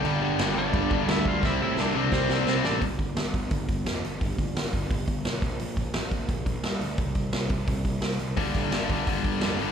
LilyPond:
<<
  \new Staff \with { instrumentName = "Lead electric guitar" } { \time 4/4 \key c \major \tempo 4 = 173 <g' g''>4. <d' d''>4. <e' e''>8 <f' f''>8 | <e' e''>8 <e' e''>8 <d' d''>4 <c' c''>4. <d' d''>8 | r1 | r1 |
r1 | r1 | r1 | }
  \new Staff \with { instrumentName = "Overdriven electric guitar" } { \clef bass \time 4/4 \key c \major <g, d g>4 <g, d g>2~ <g, d g>8 r8 | <c g c'>4. <c g c'>2~ <c g c'>8 | r1 | r1 |
r1 | r1 | r1 | }
  \new Staff \with { instrumentName = "Distorted electric guitar" } { \clef bass \time 4/4 \key c \major <g, d g>8 <g, d g>8 <g, d g>8 <g, d g>8 <g, d g>8 <g, d g>8 <g, d g>8 <g, d g>8 | <c g c'>8 <c g c'>8 <c g c'>8 <c g c'>8 <c g c'>8 <c g c'>8 <c g c'>8 <c g c'>8 | r1 | r1 |
r1 | r1 | <g, d g>4 <g, d g>8 <g, d g>8 <g, d g>4 <g, d g>8 <g, d g>8 | }
  \new Staff \with { instrumentName = "Distorted electric guitar" } { \clef bass \time 4/4 \key c \major <g, d g>8 <g, d g>8 <g, d g>8 <g, d g>8 <g, d g>8 <g, d g>8 <g, d g>8 <g, d g>8 | <c g c'>8 <c g c'>8 <c g c'>8 <c g c'>8 <c g c'>8 <c g c'>8 <c g c'>8 <c g c'>8 | r1 | r1 |
r1 | r1 | <g, d g>4 <g, d g>8 <g, d g>8 <g, d g>4 <g, d g>8 <g, d g>8 | }
  \new Staff \with { instrumentName = "Picked electric bass" } { \clef bass \time 4/4 \key c \major g,,4 g,,8 g,,8 g,,4 d,4 | c,8 a,8 c,8 c,8 c,8 c,8 c,8 a,,8 | g,,8 g,,8 g,,8 g,,8 g,,8 g,,8 f,8 g,,8 | g,,8 g,,8 g,,8 g,,8 g,,8 g,,8 b,,8 bes,,8 |
bes,,8 bes,,8 bes,,8 bes,,8 bes,,8 bes,,8 g,8 d,8 | c,8 c,8 c,8 c,8 c,8 c,8 c,8 c,8 | g,,8 g,,8 g,,8 g,,8 g,,8 g,,8 f,8 g,,8 | }
  \new DrumStaff \with { instrumentName = "Drums" } \drummode { \time 4/4 cymc4 <cymc sn>4 <cymc bd>8 bd8 <cymc sn>8 bd8 | <bd sn>4 sn4 <bd sn>8 sn8 sn8 sn8 | <hho bd>8 <hho bd>8 <hho sn>8 <hho bd>8 <hho bd>8 <hho bd>8 <hho sn>8 hho8 | <hho bd>8 <hho bd>8 <hho sn>8 <hho bd>8 <hho bd>8 <hho bd>8 <hho sn>8 <hho bd>8 |
hho8 <hho bd>8 <hho sn>8 <hho bd>8 <hho bd>8 <hho bd>8 <hho sn>8 hho8 | <hho bd>8 <hho bd>8 <hho sn>8 <hho bd>8 <hho bd>8 <hho bd>8 <hho sn>8 hho8 | <hho bd>8 <hho bd>8 <hho sn>8 <hho bd>8 <hho bd>8 <hho bd>8 <hho sn>8 hho8 | }
>>